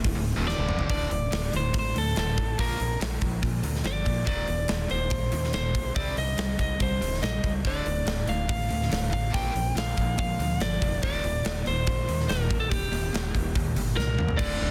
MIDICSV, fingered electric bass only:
0, 0, Header, 1, 2, 480
1, 0, Start_track
1, 0, Tempo, 422238
1, 1014, Time_signature, 4, 2, 24, 8
1, 16720, End_track
2, 0, Start_track
2, 0, Title_t, "Fingered electric bass"
2, 0, Program_c, 0, 33
2, 54, Note_on_c, 0, 26, 70
2, 166, Note_off_c, 0, 26, 0
2, 189, Note_on_c, 0, 26, 70
2, 406, Note_off_c, 0, 26, 0
2, 419, Note_on_c, 0, 27, 86
2, 640, Note_off_c, 0, 27, 0
2, 660, Note_on_c, 0, 26, 99
2, 881, Note_off_c, 0, 26, 0
2, 895, Note_on_c, 0, 29, 91
2, 1007, Note_off_c, 0, 29, 0
2, 1022, Note_on_c, 0, 26, 83
2, 1222, Note_off_c, 0, 26, 0
2, 1263, Note_on_c, 0, 26, 82
2, 1462, Note_off_c, 0, 26, 0
2, 1504, Note_on_c, 0, 26, 89
2, 1703, Note_off_c, 0, 26, 0
2, 1738, Note_on_c, 0, 26, 79
2, 1939, Note_off_c, 0, 26, 0
2, 1982, Note_on_c, 0, 33, 88
2, 2182, Note_off_c, 0, 33, 0
2, 2222, Note_on_c, 0, 38, 83
2, 2422, Note_off_c, 0, 38, 0
2, 2467, Note_on_c, 0, 26, 86
2, 2665, Note_off_c, 0, 26, 0
2, 2702, Note_on_c, 0, 33, 83
2, 2902, Note_off_c, 0, 33, 0
2, 2945, Note_on_c, 0, 34, 76
2, 3144, Note_off_c, 0, 34, 0
2, 3186, Note_on_c, 0, 34, 90
2, 3384, Note_off_c, 0, 34, 0
2, 3422, Note_on_c, 0, 34, 90
2, 3622, Note_off_c, 0, 34, 0
2, 3657, Note_on_c, 0, 34, 83
2, 3859, Note_off_c, 0, 34, 0
2, 3898, Note_on_c, 0, 46, 88
2, 4100, Note_off_c, 0, 46, 0
2, 4125, Note_on_c, 0, 38, 82
2, 4333, Note_off_c, 0, 38, 0
2, 4370, Note_on_c, 0, 31, 87
2, 4576, Note_off_c, 0, 31, 0
2, 4617, Note_on_c, 0, 46, 89
2, 4820, Note_off_c, 0, 46, 0
2, 4857, Note_on_c, 0, 27, 81
2, 5060, Note_off_c, 0, 27, 0
2, 5088, Note_on_c, 0, 27, 92
2, 5295, Note_off_c, 0, 27, 0
2, 5336, Note_on_c, 0, 27, 96
2, 5539, Note_off_c, 0, 27, 0
2, 5578, Note_on_c, 0, 27, 88
2, 5781, Note_off_c, 0, 27, 0
2, 5818, Note_on_c, 0, 34, 95
2, 6021, Note_off_c, 0, 34, 0
2, 6055, Note_on_c, 0, 39, 84
2, 6259, Note_off_c, 0, 39, 0
2, 6293, Note_on_c, 0, 27, 92
2, 6498, Note_off_c, 0, 27, 0
2, 6532, Note_on_c, 0, 35, 82
2, 6738, Note_off_c, 0, 35, 0
2, 6770, Note_on_c, 0, 36, 83
2, 6977, Note_off_c, 0, 36, 0
2, 7017, Note_on_c, 0, 36, 96
2, 7221, Note_off_c, 0, 36, 0
2, 7258, Note_on_c, 0, 36, 88
2, 7462, Note_off_c, 0, 36, 0
2, 7496, Note_on_c, 0, 36, 78
2, 7700, Note_off_c, 0, 36, 0
2, 7738, Note_on_c, 0, 36, 82
2, 7941, Note_off_c, 0, 36, 0
2, 7975, Note_on_c, 0, 27, 79
2, 8180, Note_off_c, 0, 27, 0
2, 8205, Note_on_c, 0, 34, 96
2, 8414, Note_off_c, 0, 34, 0
2, 8453, Note_on_c, 0, 37, 80
2, 8659, Note_off_c, 0, 37, 0
2, 8701, Note_on_c, 0, 26, 87
2, 8903, Note_off_c, 0, 26, 0
2, 8928, Note_on_c, 0, 26, 85
2, 9136, Note_off_c, 0, 26, 0
2, 9167, Note_on_c, 0, 26, 87
2, 9376, Note_off_c, 0, 26, 0
2, 9406, Note_on_c, 0, 26, 83
2, 9615, Note_off_c, 0, 26, 0
2, 9654, Note_on_c, 0, 33, 86
2, 9860, Note_off_c, 0, 33, 0
2, 9892, Note_on_c, 0, 38, 89
2, 10098, Note_off_c, 0, 38, 0
2, 10131, Note_on_c, 0, 26, 101
2, 10338, Note_off_c, 0, 26, 0
2, 10380, Note_on_c, 0, 33, 82
2, 10583, Note_off_c, 0, 33, 0
2, 10627, Note_on_c, 0, 34, 87
2, 10827, Note_off_c, 0, 34, 0
2, 10855, Note_on_c, 0, 34, 93
2, 11060, Note_off_c, 0, 34, 0
2, 11099, Note_on_c, 0, 34, 85
2, 11303, Note_off_c, 0, 34, 0
2, 11344, Note_on_c, 0, 34, 92
2, 11545, Note_off_c, 0, 34, 0
2, 11577, Note_on_c, 0, 46, 80
2, 11782, Note_off_c, 0, 46, 0
2, 11814, Note_on_c, 0, 38, 94
2, 12020, Note_off_c, 0, 38, 0
2, 12056, Note_on_c, 0, 31, 95
2, 12261, Note_off_c, 0, 31, 0
2, 12301, Note_on_c, 0, 29, 95
2, 12503, Note_off_c, 0, 29, 0
2, 12536, Note_on_c, 0, 27, 80
2, 12741, Note_off_c, 0, 27, 0
2, 12782, Note_on_c, 0, 27, 98
2, 12984, Note_off_c, 0, 27, 0
2, 13020, Note_on_c, 0, 27, 87
2, 13223, Note_off_c, 0, 27, 0
2, 13259, Note_on_c, 0, 27, 86
2, 13463, Note_off_c, 0, 27, 0
2, 13500, Note_on_c, 0, 34, 85
2, 13703, Note_off_c, 0, 34, 0
2, 13742, Note_on_c, 0, 39, 93
2, 13944, Note_off_c, 0, 39, 0
2, 13983, Note_on_c, 0, 27, 95
2, 14185, Note_off_c, 0, 27, 0
2, 14219, Note_on_c, 0, 34, 85
2, 14422, Note_off_c, 0, 34, 0
2, 14449, Note_on_c, 0, 27, 82
2, 14657, Note_off_c, 0, 27, 0
2, 14681, Note_on_c, 0, 27, 97
2, 14892, Note_off_c, 0, 27, 0
2, 14934, Note_on_c, 0, 27, 90
2, 15139, Note_off_c, 0, 27, 0
2, 15176, Note_on_c, 0, 27, 88
2, 15380, Note_off_c, 0, 27, 0
2, 15410, Note_on_c, 0, 39, 75
2, 15617, Note_off_c, 0, 39, 0
2, 15641, Note_on_c, 0, 31, 82
2, 15851, Note_off_c, 0, 31, 0
2, 15880, Note_on_c, 0, 36, 94
2, 16090, Note_off_c, 0, 36, 0
2, 16127, Note_on_c, 0, 39, 89
2, 16334, Note_off_c, 0, 39, 0
2, 16363, Note_on_c, 0, 26, 94
2, 16590, Note_off_c, 0, 26, 0
2, 16608, Note_on_c, 0, 26, 92
2, 16720, Note_off_c, 0, 26, 0
2, 16720, End_track
0, 0, End_of_file